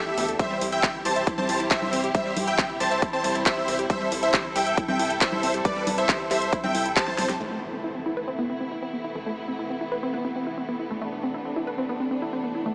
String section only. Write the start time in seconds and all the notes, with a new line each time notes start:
Already playing: B2 E3 A3 D4 A4
0.40 C3 G3 E4 G4
3.90 A4
7.40 C3 E3 A3 B3 E4
10.91 D4